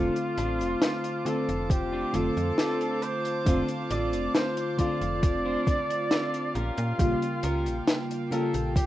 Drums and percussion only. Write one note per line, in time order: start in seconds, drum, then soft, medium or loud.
0.16 closed hi-hat medium
0.38 closed hi-hat medium
0.38 cabasa medium
0.60 closed hi-hat medium
0.60 cabasa medium
0.82 snare loud
0.82 closed hi-hat loud
1.04 closed hi-hat medium
1.26 closed hi-hat medium
1.26 cabasa medium
1.49 closed hi-hat medium
1.49 cabasa medium
1.70 kick loud
1.70 closed hi-hat medium
1.70 cabasa soft
2.14 closed hi-hat medium
2.14 cabasa medium
2.37 closed hi-hat soft
2.37 cabasa medium
2.58 snare loud
2.58 closed hi-hat medium
2.58 cabasa soft
2.81 closed hi-hat medium
3.02 closed hi-hat medium
3.02 cabasa medium
3.25 closed hi-hat medium
3.25 cabasa medium
3.46 kick loud
3.46 closed hi-hat loud
3.46 cabasa soft
3.68 closed hi-hat medium
3.90 closed hi-hat medium
3.90 cabasa medium
4.13 closed hi-hat medium
4.13 cabasa medium
4.34 snare loud
4.34 closed hi-hat loud
4.34 cabasa soft
4.57 closed hi-hat medium
4.79 kick medium
4.79 closed hi-hat medium
4.79 cabasa medium
5.02 closed hi-hat medium
5.02 cabasa medium
5.23 kick loud
5.23 closed hi-hat loud
5.23 cabasa soft
5.67 kick loud
5.67 closed hi-hat medium
5.67 cabasa medium
5.90 closed hi-hat medium
5.90 cabasa medium
6.11 snare loud
6.11 closed hi-hat loud
6.11 cabasa soft
6.34 closed hi-hat medium
6.55 closed hi-hat medium
6.55 cabasa medium
6.78 closed hi-hat medium
6.78 cabasa medium
6.99 kick loud
6.99 closed hi-hat medium
6.99 cabasa soft
7.22 closed hi-hat medium
7.43 closed hi-hat medium
7.43 cabasa medium
7.66 closed hi-hat medium
7.66 cabasa medium
7.87 snare loud
7.87 closed hi-hat loud
7.87 cabasa soft
8.11 closed hi-hat medium
8.32 closed hi-hat medium
8.32 cabasa medium
8.54 closed hi-hat medium
8.54 cabasa medium
8.76 kick loud
8.76 closed hi-hat loud
8.76 cabasa soft